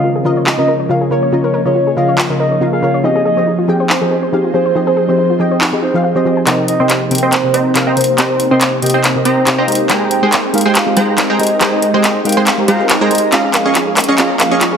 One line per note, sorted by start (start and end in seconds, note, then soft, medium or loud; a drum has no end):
0.00 0.22 C#3 medium
0.00 6.43 F3 medium
0.00 3.00 A#3 medium
0.00 0.23 C#4 medium
0.00 3.01 C#4 medium
0.00 0.23 F4 medium
0.00 0.09 F4 medium
0.00 6.43 G#4 medium
0.00 0.23 A#4 medium
0.00 3.01 C#5 medium
0.00 0.23 D#5 medium
0.16 0.22 G#4 medium
0.24 0.55 C#3 medium
0.24 0.55 C#4 medium
0.24 0.56 F4 medium
0.24 0.32 A#4 medium
0.24 0.56 A#4 medium
0.24 0.56 D#5 loud
0.37 0.41 C#5 medium
0.47 0.51 F4 loud
0.47 0.73 D#5 medium
0.47 clap medium
0.58 0.77 C#3 medium
0.58 0.77 C#4 medium
0.58 0.78 F4 medium
0.58 0.64 A#4 medium
0.58 0.78 A#4 medium
0.58 0.78 D#5 loud
0.68 0.75 A#4 loud
0.80 0.86 C#5 medium
0.89 1.08 C#3 medium
0.89 1.08 C#4 medium
0.89 0.94 F4 medium
0.89 1.09 F4 medium
0.89 1.09 A#4 medium
0.89 1.09 F5 loud
1.01 1.07 G#4 medium
1.10 1.29 C#3 medium
1.10 1.29 C#4 medium
1.10 1.30 F4 medium
1.10 1.18 A#4 medium
1.10 1.30 A#4 medium
1.10 1.37 C#5 medium
1.10 1.30 C#5 medium
1.23 1.27 C#5 medium
1.32 1.51 C#3 medium
1.32 1.52 C#4 medium
1.32 1.37 F4 loud
1.32 1.52 F4 medium
1.32 1.52 A#4 medium
1.32 1.52 D#5 medium
1.44 1.50 A#4 loud
1.44 1.61 C#5 medium
1.54 1.61 A#4 loud
1.65 1.94 C#3 medium
1.65 1.94 C#4 medium
1.65 1.94 F4 medium
1.65 1.95 A#4 medium
1.65 1.71 C#5 medium
1.65 1.91 C#5 medium
1.65 1.95 D#5 medium
1.75 1.80 F4 medium
1.87 1.93 G#4 medium
1.96 2.27 C#3 medium
1.96 2.27 C#4 medium
1.96 2.27 F4 medium
1.96 2.04 A#4 medium
1.96 2.27 A#4 medium
1.96 2.28 D#5 loud
1.96 2.14 F5 medium
2.09 2.12 C#5 medium
2.18 2.23 F4 loud
2.18 clap medium
2.29 2.48 C#3 medium
2.29 2.49 C#4 medium
2.29 2.49 F4 medium
2.29 2.36 A#4 loud
2.29 2.49 A#4 medium
2.29 2.49 D#5 medium
2.40 2.47 A#4 medium
2.40 2.65 D#5 medium
2.51 2.57 C#5 medium
2.60 2.80 C#3 medium
2.60 2.80 C#4 medium
2.60 2.66 F4 medium
2.60 2.80 F4 medium
2.60 2.80 A#4 medium
2.60 2.81 F5 medium
2.73 2.79 G#4 medium
2.73 2.98 F5 loud
2.82 3.01 C#3 medium
2.82 3.01 C#4 medium
2.82 3.01 F4 medium
2.82 2.90 A#4 medium
2.82 3.01 A#4 medium
2.82 3.02 C#5 medium
2.94 2.98 C#5 medium
3.03 3.23 F3 medium
3.03 3.23 C4 medium
3.03 6.43 C4 medium
3.03 6.43 D#4 medium
3.03 3.09 D#4 loud
3.03 3.23 G4 medium
3.03 3.24 G#4 medium
3.03 6.43 C5 medium
3.03 3.21 D#5 medium
3.03 3.24 D#5 medium
3.15 3.21 G#4 loud
3.25 3.32 G#4 medium
3.25 3.51 D#5 medium
3.36 3.65 F3 medium
3.36 3.66 C4 medium
3.36 3.66 G4 medium
3.36 3.66 G#4 medium
3.36 3.43 C5 medium
3.36 3.66 D#5 medium
3.47 3.52 D#4 medium
3.58 3.64 F4 medium
3.67 3.98 F3 medium
3.67 3.98 C4 medium
3.67 3.99 G4 medium
3.67 3.75 G#4 medium
3.67 3.99 G#4 medium
3.67 3.99 G5 loud
3.80 3.84 C5 medium
3.90 3.94 D#4 loud
3.90 4.15 C5 medium
3.90 clap medium
4.00 4.20 F3 medium
4.00 4.20 C4 medium
4.00 4.20 G4 medium
4.00 4.07 G#4 loud
4.00 4.21 G#4 medium
4.00 4.21 D#5 medium
4.11 4.18 G#4 loud
4.23 4.29 C5 medium
4.32 4.51 F3 medium
4.32 4.52 C4 medium
4.32 4.37 D#4 medium
4.32 4.52 G4 medium
4.32 4.52 G#4 medium
4.32 4.52 F5 loud
4.44 4.50 F4 medium
4.53 4.72 F3 medium
4.53 4.72 C4 medium
4.53 4.73 G4 medium
4.53 4.61 G#4 medium
4.53 4.73 G#4 medium
4.53 4.80 C5 medium
4.53 4.73 C5 loud
4.66 4.70 C5 medium
4.75 4.94 F3 medium
4.75 4.95 C4 medium
4.75 4.80 D#4 loud
4.75 4.95 G4 medium
4.75 4.95 G#4 medium
4.75 4.95 D#5 medium
4.87 4.93 G#4 loud
4.87 5.03 C5 medium
4.97 5.04 G#4 loud
5.08 5.37 F3 medium
5.08 5.37 C4 medium
5.08 5.37 G4 medium
5.08 5.38 G#4 medium
5.08 5.33 C5 medium
5.08 5.14 C5 medium
5.08 5.38 D#5 medium
5.18 5.23 D#4 medium
5.30 5.36 F4 medium
5.39 5.69 F3 medium
5.39 5.70 C4 medium
5.39 5.70 G4 medium
5.39 5.47 G#4 medium
5.39 5.70 G#4 medium
5.39 5.57 D#5 medium
5.39 5.70 G5 loud
5.51 5.55 C5 medium
5.61 5.66 D#4 loud
5.61 clap medium
5.72 5.91 F3 medium
5.72 5.92 C4 medium
5.72 5.92 G4 medium
5.72 5.79 G#4 medium
5.72 5.92 G#4 medium
5.72 5.92 D#5 medium
5.82 5.90 D#4 medium
5.82 6.08 C5 loud
5.93 6.12 F3 loud
5.93 6.13 C4 medium
5.93 6.00 D#4 medium
5.93 6.13 G4 medium
5.93 6.13 G#4 medium
5.93 6.13 F5 loud
6.04 6.07 F5 medium
6.15 6.23 F3 medium
6.15 6.23 C4 medium
6.15 6.23 G4 medium
6.15 6.23 G#4 medium
6.15 6.41 C5 loud
6.15 6.20 C5 medium
6.15 6.24 D#5 loud
6.24 6.44 F3 medium
6.24 6.44 C4 medium
6.24 6.28 F4 medium
6.24 6.44 G4 medium
6.24 6.45 G#4 medium
6.24 6.45 D#5 medium
6.37 6.41 G#5 medium
6.46 6.66 C3 medium
6.46 9.65 A#3 medium
6.46 6.66 C4 medium
6.46 9.65 C4 medium
6.46 6.77 C4 medium
6.46 13.29 D#4 medium
6.46 6.66 G4 medium
6.46 9.65 G4 medium
6.46 6.66 A#4 medium
6.46 11.36 C5 medium
6.46 6.77 C5 medium
6.46 6.64 D#5 loud
6.46 6.77 D#5 medium
6.46 6.67 D#5 medium
6.46 6.77 G5 medium
6.46 6.77 A#5 medium
6.46 clap soft
6.46 closed hi-hat medium
6.68 6.94 D#5 medium
6.68 closed hi-hat medium
6.79 7.08 C3 medium
6.79 7.09 C4 medium
6.79 7.20 C4 medium
6.79 7.09 G4 medium
6.79 7.09 A#4 medium
6.79 7.20 C5 medium
6.79 7.20 D#5 medium
6.79 7.09 D#5 medium
6.79 7.20 G5 medium
6.79 7.20 C6 medium
6.90 clap soft
6.90 closed hi-hat medium
7.10 7.41 C3 medium
7.10 7.41 C4 medium
7.10 7.41 G4 medium
7.10 7.42 A#4 medium
7.10 7.42 G5 loud
7.10 closed hi-hat soft
7.15 closed hi-hat medium
7.18 closed hi-hat medium
7.23 7.33 C4 medium
7.23 7.33 C5 medium
7.23 7.33 D#5 medium
7.23 7.33 G5 medium
7.23 7.33 C6 medium
7.32 7.58 C5 medium
7.32 clap soft
7.32 closed hi-hat medium
7.43 7.63 C3 medium
7.43 7.63 C4 medium
7.43 7.63 G4 medium
7.43 7.63 A#4 medium
7.43 7.64 D#5 loud
7.54 7.84 C4 medium
7.54 7.84 C5 medium
7.54 7.84 D#5 medium
7.54 7.84 G5 medium
7.54 7.84 A#5 medium
7.54 closed hi-hat medium
7.74 7.94 C3 medium
7.74 7.94 C4 medium
7.74 7.94 G4 medium
7.74 7.95 A#4 medium
7.74 7.95 F5 loud
7.74 clap soft
7.74 closed hi-hat medium
7.87 7.97 C4 medium
7.87 7.97 C5 medium
7.87 7.97 D#5 medium
7.87 7.97 G5 medium
7.87 7.97 A#5 loud
7.96 8.15 C3 medium
7.96 8.15 C4 medium
7.96 8.15 G4 medium
7.96 8.16 A#4 medium
7.96 8.23 C5 medium
7.96 8.16 C5 medium
7.96 closed hi-hat soft
8.01 closed hi-hat medium
8.04 closed hi-hat medium
8.17 8.37 C3 medium
8.17 8.37 C4 medium
8.17 8.49 C4 medium
8.17 8.38 G4 medium
8.17 8.38 A#4 medium
8.17 8.49 C5 medium
8.17 8.49 D#5 medium
8.17 8.38 D#5 medium
8.17 8.49 G5 medium
8.17 8.48 A#5 medium
8.17 clap medium
8.17 closed hi-hat medium
8.30 8.46 C5 medium
8.40 closed hi-hat medium
8.50 8.80 C3 medium
8.50 8.80 C4 medium
8.50 8.91 C4 medium
8.50 8.80 G4 medium
8.50 8.81 A#4 medium
8.50 8.91 C5 medium
8.50 8.76 C5 loud
8.50 8.91 D#5 medium
8.50 8.81 D#5 medium
8.50 8.91 G5 medium
8.50 8.91 C6 medium
8.61 clap medium
8.61 closed hi-hat medium
8.82 9.12 C3 medium
8.82 9.13 C4 medium
8.82 9.13 G4 medium
8.82 9.13 A#4 medium
8.82 9.00 D#5 medium
8.82 9.13 G5 loud
8.82 closed hi-hat soft
8.86 closed hi-hat medium
8.90 closed hi-hat medium
8.94 9.04 C4 medium
8.94 9.04 C5 medium
8.94 9.04 D#5 medium
8.94 9.04 G5 medium
8.94 9.04 C6 loud
9.04 clap medium
9.04 closed hi-hat medium
9.15 9.34 C3 medium
9.15 9.34 C4 medium
9.15 9.35 G4 medium
9.15 9.35 A#4 medium
9.15 9.35 D#5 loud
9.25 9.56 C4 medium
9.25 9.60 C5 medium
9.25 9.56 C5 medium
9.25 9.56 D#5 medium
9.25 9.56 G5 medium
9.25 9.56 A#5 medium
9.25 closed hi-hat medium
9.46 9.65 C3 medium
9.46 9.66 C4 medium
9.46 9.66 G4 medium
9.46 9.66 A#4 medium
9.46 9.66 F5 medium
9.46 clap medium
9.46 closed hi-hat medium
9.58 9.67 C4 medium
9.58 9.67 C5 medium
9.58 9.83 D#5 loud
9.58 9.67 D#5 medium
9.58 9.67 G5 medium
9.58 9.67 A#5 medium
9.67 9.86 G#3 medium
9.67 13.29 G#3 medium
9.67 13.29 C4 medium
9.67 9.86 D#4 medium
9.67 9.87 G4 medium
9.67 9.87 A#4 medium
9.67 9.87 C5 medium
9.67 13.29 G5 medium
9.67 closed hi-hat soft
9.72 closed hi-hat medium
9.75 closed hi-hat medium
9.89 10.08 G#3 medium
9.89 10.20 G#3 medium
9.89 10.09 D#4 medium
9.89 10.09 G4 medium
9.89 10.20 G#4 medium
9.89 10.09 A#4 medium
9.89 10.20 C5 medium
9.89 10.09 C5 medium
9.89 10.07 G5 medium
9.89 10.20 G5 medium
9.89 10.20 A#5 medium
9.89 clap medium
9.89 closed hi-hat medium
10.11 10.37 G5 medium
10.11 closed hi-hat medium
10.22 10.51 G#3 medium
10.22 10.63 G#3 medium
10.22 10.51 D#4 medium
10.22 10.52 G4 medium
10.22 10.63 G#4 medium
10.22 10.52 A#4 medium
10.22 10.63 C5 medium
10.22 10.52 C5 medium
10.22 10.63 G5 medium
10.22 10.63 C6 medium
10.32 clap medium
10.32 closed hi-hat medium
10.53 10.84 G#3 medium
10.53 10.84 D#4 medium
10.53 10.84 G4 medium
10.53 10.84 A#4 medium
10.53 10.85 F5 loud
10.53 closed hi-hat soft
10.58 closed hi-hat medium
10.61 closed hi-hat medium
10.66 10.76 G#3 medium
10.66 10.76 G#4 medium
10.66 10.76 C5 medium
10.66 10.76 G5 medium
10.66 10.76 C6 loud
10.75 11.01 F5 medium
10.75 clap medium
10.75 closed hi-hat medium
10.86 11.05 G#3 medium
10.86 11.06 D#4 medium
10.86 11.06 G4 medium
10.86 11.06 A#4 medium
10.86 11.06 C5 loud
10.97 11.27 G#3 medium
10.97 11.27 G#4 medium
10.97 11.27 C5 medium
10.97 11.27 G5 medium
10.97 11.27 A#5 medium
10.97 closed hi-hat medium
11.17 11.37 G#3 medium
11.17 11.37 D#4 medium
11.17 11.37 G4 medium
11.17 11.38 A#4 medium
11.17 11.38 D#5 loud
11.17 clap medium
11.17 closed hi-hat medium
11.30 11.40 G#3 medium
11.30 11.40 G#4 medium
11.30 11.40 C5 medium
11.30 11.40 G5 medium
11.30 11.40 A#5 loud
11.39 11.58 G#3 medium
11.39 11.58 D#4 medium
11.39 11.58 G4 medium
11.39 13.31 A#4 medium
11.39 11.58 A#4 medium
11.39 11.59 C5 loud
11.39 11.65 D#5 medium
11.39 closed hi-hat soft
11.43 closed hi-hat medium
11.47 closed hi-hat medium
11.60 11.80 G#3 medium
11.60 11.91 G#3 medium
11.60 11.80 D#4 medium
11.60 11.80 G4 medium
11.60 11.91 G#4 medium
11.60 11.81 A#4 medium
11.60 11.91 C5 medium
11.60 11.81 C5 medium
11.60 11.91 G5 medium
11.60 11.91 A#5 medium
11.60 clap medium
11.60 closed hi-hat medium
11.73 11.89 D#5 medium
11.82 closed hi-hat medium
11.93 12.23 G#3 medium
11.93 12.34 G#3 medium
11.93 12.23 D#4 medium
11.93 12.23 G4 medium
11.93 12.34 G#4 medium
11.93 12.23 A#4 medium
11.93 12.34 C5 medium
11.93 12.23 C5 medium
11.93 12.19 D#5 loud
11.93 12.34 G5 medium
11.93 12.34 C6 medium
12.04 clap medium
12.04 closed hi-hat medium
12.24 12.55 G#3 medium
12.24 12.55 D#4 medium
12.24 12.56 G4 medium
12.24 12.56 A#4 medium
12.24 12.56 F5 loud
12.24 12.43 G5 medium
12.24 closed hi-hat soft
12.29 closed hi-hat medium
12.32 closed hi-hat medium
12.37 12.47 G#3 medium
12.37 12.47 G#4 medium
12.37 12.47 C5 medium
12.37 12.47 G5 medium
12.37 12.47 C6 loud
12.47 clap medium
12.47 closed hi-hat medium
12.57 12.77 G#3 medium
12.57 12.77 D#4 medium
12.57 12.77 G4 medium
12.57 12.78 A#4 medium
12.57 12.78 C5 loud
12.68 12.99 G#3 medium
12.68 12.99 G#4 medium
12.68 12.99 C5 medium
12.68 12.94 F5 loud
12.68 12.99 G5 medium
12.68 12.99 A#5 medium
12.68 closed hi-hat medium
12.79 12.98 G#3 loud
12.79 12.98 D#4 medium
12.79 12.98 G4 medium
12.79 12.99 A#4 medium
12.79 12.99 D#5 loud
12.89 clap medium
12.89 closed hi-hat medium
13.00 13.08 G#3 medium
13.00 13.12 G#3 medium
13.00 13.08 D#4 medium
13.00 13.09 G4 medium
13.00 13.12 G#4 medium
13.00 13.09 A#4 medium
13.00 13.12 C5 medium
13.00 13.09 C5 loud
13.00 13.32 D#5 loud
13.00 13.12 G5 medium
13.00 13.12 A#5 medium
13.10 13.30 G#3 medium
13.10 13.30 D#4 medium
13.10 13.30 G4 medium
13.10 13.30 A#4 medium
13.10 13.31 C5 medium
13.10 closed hi-hat soft
13.15 closed hi-hat medium
13.18 closed hi-hat medium
13.32 14.77 F3 medium
13.32 14.77 A#3 medium
13.32 14.77 C#4 medium
13.32 13.63 C#4 medium
13.32 13.37 F4 medium
13.32 13.63 G#4 medium
13.32 14.77 G#4 medium
13.32 14.77 C#5 medium
13.32 13.63 D#5 medium
13.32 13.50 F5 medium
13.32 13.63 F5 medium
13.32 13.63 A#5 medium
13.32 clap medium
13.32 closed hi-hat medium
13.32 riser medium
13.44 13.50 G#4 medium
13.54 13.61 A#4 medium
13.54 13.80 F5 medium
13.54 clap medium
13.54 closed hi-hat medium
13.66 14.06 C#4 medium
13.66 14.06 G#4 medium
13.66 13.72 C#5 medium
13.66 14.06 D#5 medium
13.66 14.06 F5 medium
13.66 14.06 C#6 medium
13.75 13.80 F4 medium
13.75 clap medium
13.75 closed hi-hat medium
13.87 13.93 G#4 medium
13.97 14.04 A#4 medium
13.97 clap medium
13.97 closed hi-hat medium
13.97 open hi-hat medium
14.04 closed hi-hat medium
14.08 14.17 C#4 medium
14.08 14.17 G#4 medium
14.08 14.12 C#5 medium
14.08 14.17 D#5 medium
14.08 14.17 F5 medium
14.08 14.17 C#6 loud
14.18 14.49 C#4 medium
14.18 14.23 F4 medium
14.18 14.49 G#4 medium
14.18 14.49 D#5 medium
14.18 14.36 F5 medium
14.18 14.49 F5 medium
14.18 14.49 A#5 medium
14.18 clap medium
14.18 closed hi-hat medium
14.30 14.36 G#4 medium
14.39 14.47 A#4 medium
14.39 14.65 F5 medium
14.39 clap medium
14.39 closed hi-hat medium
14.51 14.77 C#4 medium
14.51 14.77 G#4 medium
14.51 14.57 C#5 medium
14.51 14.77 D#5 medium
14.51 14.77 F5 medium
14.51 14.77 C#6 medium
14.61 14.66 F4 medium
14.61 clap medium
14.61 closed hi-hat medium
14.73 14.77 G#4 medium